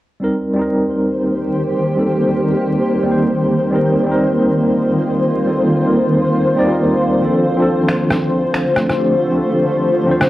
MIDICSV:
0, 0, Header, 1, 5, 480
1, 0, Start_track
1, 0, Tempo, 437956
1, 244, Time_signature, 4, 2, 24, 8
1, 11283, End_track
2, 0, Start_track
2, 0, Title_t, "Synth texture"
2, 0, Program_c, 0, 99
2, 248, Note_on_c, 0, 72, 73
2, 11283, Note_off_c, 0, 72, 0
2, 11283, End_track
3, 0, Start_track
3, 0, Title_t, "Tine electric piano"
3, 0, Program_c, 1, 4
3, 220, Note_on_c, 1, 55, 78
3, 235, Note_on_c, 1, 60, 69
3, 249, Note_on_c, 1, 63, 69
3, 263, Note_on_c, 1, 70, 91
3, 423, Control_c, 1, 64, 127
3, 575, Note_off_c, 1, 55, 0
3, 588, Note_on_c, 1, 55, 82
3, 590, Note_off_c, 1, 60, 0
3, 597, Note_off_c, 1, 63, 0
3, 604, Note_off_c, 1, 70, 0
3, 617, Note_on_c, 1, 60, 76
3, 647, Note_on_c, 1, 63, 77
3, 675, Note_on_c, 1, 70, 89
3, 2121, Note_off_c, 1, 55, 0
3, 2136, Note_off_c, 1, 60, 0
3, 2144, Note_on_c, 1, 55, 64
3, 2151, Note_off_c, 1, 63, 0
3, 2157, Note_on_c, 1, 60, 59
3, 2165, Note_off_c, 1, 70, 0
3, 2173, Note_on_c, 1, 63, 60
3, 2185, Note_on_c, 1, 69, 68
3, 2246, Note_off_c, 1, 55, 0
3, 2253, Note_off_c, 1, 60, 0
3, 2261, Note_off_c, 1, 63, 0
3, 2267, Note_off_c, 1, 69, 0
3, 2504, Note_on_c, 1, 55, 65
3, 2534, Note_on_c, 1, 60, 61
3, 2560, Note_on_c, 1, 63, 58
3, 2590, Note_on_c, 1, 70, 69
3, 3309, Note_off_c, 1, 55, 0
3, 3323, Note_on_c, 1, 55, 84
3, 3334, Note_off_c, 1, 60, 0
3, 3347, Note_off_c, 1, 63, 0
3, 3352, Note_on_c, 1, 60, 76
3, 3362, Note_off_c, 1, 70, 0
3, 3381, Note_on_c, 1, 63, 74
3, 3412, Note_on_c, 1, 72, 91
3, 4041, Note_off_c, 1, 55, 0
3, 4056, Note_off_c, 1, 60, 0
3, 4062, Note_on_c, 1, 55, 83
3, 4070, Note_off_c, 1, 63, 0
3, 4078, Note_on_c, 1, 60, 75
3, 4086, Note_off_c, 1, 72, 0
3, 4092, Note_on_c, 1, 63, 71
3, 4109, Note_on_c, 1, 70, 88
3, 4410, Note_off_c, 1, 55, 0
3, 4424, Note_on_c, 1, 55, 89
3, 4431, Note_off_c, 1, 60, 0
3, 4439, Note_off_c, 1, 63, 0
3, 4447, Note_off_c, 1, 70, 0
3, 4452, Note_on_c, 1, 60, 79
3, 4479, Note_on_c, 1, 63, 81
3, 4509, Note_on_c, 1, 70, 100
3, 5959, Note_off_c, 1, 55, 0
3, 5973, Note_off_c, 1, 60, 0
3, 5980, Note_on_c, 1, 55, 69
3, 5987, Note_off_c, 1, 63, 0
3, 5995, Note_on_c, 1, 60, 61
3, 6002, Note_off_c, 1, 70, 0
3, 6012, Note_on_c, 1, 63, 62
3, 6024, Note_on_c, 1, 69, 76
3, 6084, Note_off_c, 1, 55, 0
3, 6092, Note_off_c, 1, 60, 0
3, 6100, Note_off_c, 1, 63, 0
3, 6107, Note_off_c, 1, 69, 0
3, 6347, Note_on_c, 1, 55, 64
3, 6376, Note_on_c, 1, 60, 63
3, 6405, Note_on_c, 1, 63, 60
3, 6435, Note_on_c, 1, 70, 71
3, 7161, Note_off_c, 1, 55, 0
3, 7175, Note_off_c, 1, 60, 0
3, 7181, Note_on_c, 1, 55, 96
3, 7190, Note_off_c, 1, 63, 0
3, 7196, Note_on_c, 1, 60, 88
3, 7205, Note_off_c, 1, 70, 0
3, 7210, Note_on_c, 1, 63, 85
3, 7224, Note_on_c, 1, 74, 99
3, 7291, Note_off_c, 1, 55, 0
3, 7304, Note_on_c, 1, 55, 79
3, 7311, Note_off_c, 1, 60, 0
3, 7318, Note_off_c, 1, 63, 0
3, 7325, Note_off_c, 1, 74, 0
3, 7333, Note_on_c, 1, 60, 69
3, 7365, Note_on_c, 1, 63, 71
3, 7391, Note_on_c, 1, 70, 86
3, 7879, Note_off_c, 1, 55, 0
3, 7894, Note_off_c, 1, 60, 0
3, 7900, Note_on_c, 1, 53, 82
3, 7910, Note_off_c, 1, 63, 0
3, 7914, Note_on_c, 1, 60, 73
3, 7923, Note_off_c, 1, 70, 0
3, 7929, Note_on_c, 1, 62, 71
3, 7938, Control_c, 1, 64, 0
3, 7946, Note_on_c, 1, 69, 94
3, 8150, Control_c, 1, 64, 127
3, 8251, Note_off_c, 1, 53, 0
3, 8264, Note_on_c, 1, 53, 86
3, 8270, Note_off_c, 1, 60, 0
3, 8277, Note_off_c, 1, 62, 0
3, 8286, Note_off_c, 1, 69, 0
3, 8292, Note_on_c, 1, 60, 79
3, 8321, Note_on_c, 1, 62, 78
3, 8353, Note_on_c, 1, 69, 93
3, 9799, Note_off_c, 1, 53, 0
3, 9813, Note_off_c, 1, 60, 0
3, 9822, Note_on_c, 1, 53, 65
3, 9828, Note_off_c, 1, 62, 0
3, 9836, Note_on_c, 1, 60, 61
3, 9844, Note_off_c, 1, 69, 0
3, 9852, Note_on_c, 1, 62, 61
3, 9864, Note_on_c, 1, 67, 76
3, 9926, Note_off_c, 1, 53, 0
3, 9933, Note_off_c, 1, 60, 0
3, 9940, Note_off_c, 1, 62, 0
3, 9947, Note_off_c, 1, 67, 0
3, 10183, Note_on_c, 1, 53, 66
3, 10212, Note_on_c, 1, 60, 60
3, 10243, Note_on_c, 1, 62, 60
3, 10270, Note_on_c, 1, 69, 70
3, 10980, Note_off_c, 1, 53, 0
3, 10994, Note_on_c, 1, 53, 86
3, 11011, Note_off_c, 1, 60, 0
3, 11024, Note_on_c, 1, 60, 77
3, 11029, Note_off_c, 1, 62, 0
3, 11042, Note_off_c, 1, 69, 0
3, 11055, Note_on_c, 1, 62, 76
3, 11083, Note_on_c, 1, 72, 95
3, 11283, Note_off_c, 1, 53, 0
3, 11283, Note_off_c, 1, 60, 0
3, 11283, Note_off_c, 1, 62, 0
3, 11283, Note_off_c, 1, 72, 0
3, 11283, End_track
4, 0, Start_track
4, 0, Title_t, "Ambient pad"
4, 0, Program_c, 2, 92
4, 239, Note_on_c, 2, 58, 71
4, 240, Note_on_c, 2, 51, 76
4, 241, Note_on_c, 2, 67, 68
4, 241, Note_on_c, 2, 72, 83
4, 4045, Note_off_c, 2, 67, 0
4, 4085, Note_on_c, 2, 65, 70
4, 7878, Note_off_c, 2, 58, 0
4, 7879, Note_off_c, 2, 51, 0
4, 7923, Note_on_c, 2, 50, 77
4, 7924, Note_on_c, 2, 57, 69
4, 11283, Note_off_c, 2, 50, 0
4, 11283, Note_off_c, 2, 57, 0
4, 11283, Note_off_c, 2, 65, 0
4, 11283, Note_off_c, 2, 72, 0
4, 11283, End_track
5, 0, Start_track
5, 0, Title_t, "Drums"
5, 8643, Note_on_c, 9, 26, 98
5, 8753, Note_off_c, 9, 26, 0
5, 8884, Note_on_c, 9, 37, 58
5, 8993, Note_off_c, 9, 37, 0
5, 9362, Note_on_c, 9, 26, 93
5, 9471, Note_off_c, 9, 26, 0
5, 9604, Note_on_c, 9, 37, 42
5, 9713, Note_off_c, 9, 37, 0
5, 9749, Note_on_c, 9, 37, 31
5, 9859, Note_off_c, 9, 37, 0
5, 11188, Note_on_c, 9, 37, 60
5, 11283, Note_off_c, 9, 37, 0
5, 11283, End_track
0, 0, End_of_file